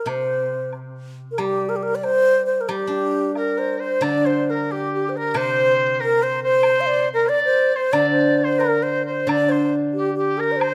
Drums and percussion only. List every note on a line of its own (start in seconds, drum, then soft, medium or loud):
0.07 high woodblock soft
0.73 high woodblock soft
1.38 high woodblock medium
2.03 high woodblock soft
2.69 high woodblock medium
3.35 high woodblock soft
3.35 low woodblock soft
4.02 high woodblock medium
5.35 high woodblock medium
6.63 high woodblock medium
7.93 high woodblock medium
8.61 high woodblock soft
9.29 high woodblock medium
10.61 high woodblock medium